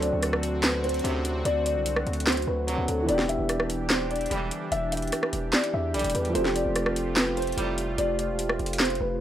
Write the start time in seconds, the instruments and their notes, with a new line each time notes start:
Already playing: 808-style bass D2, analog synth pad D3 C4 F#4, grand piano F#3 C4 D4 A4
0.02 felt piano D5, closed hi-hat
0.13 808-style bass D2
0.23 cross-stick, closed hi-hat
0.33 cross-stick
0.43 closed hi-hat
0.63 felt piano B4, snare, clap, closed hi-hat
0.84 felt piano C5, closed hi-hat
0.89 closed hi-hat
0.94 closed hi-hat
0.99 closed hi-hat
1.04 808-style bass D2, brass ensemble F#2 A2 C3, closed hi-hat
1.25 closed hi-hat
1.45 808-style bass D2, felt piano D5, closed hi-hat
1.66 felt piano D5, closed hi-hat
1.76 808-style bass C2
1.86 closed hi-hat
1.96 cross-stick
2.07 808-style bass D2, closed hi-hat
2.13 closed hi-hat
2.20 closed hi-hat
2.27 felt piano C5, snare, clap, closed hi-hat
2.32 closed hi-hat
2.37 closed hi-hat
2.42 closed hi-hat
2.47 808-style bass D2, felt piano B4
2.68 brass ensemble C3 D3 F#3, closed hi-hat
2.78 808-style bass D2
2.88 808-style bass D2, felt piano A4, closed hi-hat
3.03 grand piano E3 B3
3.08 808-style bass E1, analog synth pad E3 D4 G4, grand piano D4, felt piano D5, closed hi-hat
3.14 grand piano G4
3.19 snare
3.29 felt piano E5, closed hi-hat
3.39 808-style bass E1
3.49 cross-stick, closed hi-hat
3.60 cross-stick
3.70 closed hi-hat
3.90 felt piano C5, snare, clap, closed hi-hat
4.11 felt piano D5, closed hi-hat
4.16 closed hi-hat
4.21 closed hi-hat
4.26 closed hi-hat
4.31 808-style bass E1, brass ensemble D3 E3 G3, closed hi-hat
4.51 closed hi-hat
4.72 808-style bass E1, felt piano E5, closed hi-hat
4.92 felt piano E5, closed hi-hat
4.97 closed hi-hat
5.02 closed hi-hat
5.07 closed hi-hat
5.12 cross-stick, closed hi-hat
5.23 cross-stick
5.33 808-style bass E1, closed hi-hat
5.53 felt piano D5, snare, clap, closed hi-hat
5.64 closed hi-hat
5.74 808-style bass E2, felt piano E5
5.94 808-style bass B1, brass ensemble D3 E3 G3, felt piano D5, closed hi-hat
5.99 closed hi-hat
6.04 808-style bass E1, closed hi-hat
6.10 closed hi-hat
6.15 808-style bass E2, felt piano B4, closed hi-hat
6.25 closed hi-hat
6.29 grand piano F3 A3
6.35 808-style bass F1, analog synth pad A3 F4, grand piano C4, felt piano C5, closed hi-hat
6.41 grand piano G4
6.45 snare
6.55 felt piano D5, closed hi-hat
6.65 808-style bass F1
6.76 cross-stick, closed hi-hat
6.86 cross-stick
6.96 closed hi-hat
7.16 felt piano B4, snare, clap, closed hi-hat
7.37 felt piano C5, closed hi-hat
7.42 closed hi-hat
7.47 closed hi-hat
7.52 closed hi-hat
7.57 808-style bass F1, brass ensemble A2 C3 G3, closed hi-hat
7.78 closed hi-hat
7.98 808-style bass F1, felt piano D5, closed hi-hat
8.19 felt piano D5, closed hi-hat
8.29 808-style bass E1
8.39 closed hi-hat
8.49 cross-stick
8.59 808-style bass F1, closed hi-hat
8.66 closed hi-hat
8.73 closed hi-hat
8.79 felt piano C5, snare, clap, closed hi-hat
8.85 closed hi-hat
8.90 closed hi-hat
8.95 closed hi-hat
9.00 808-style bass F1, felt piano B4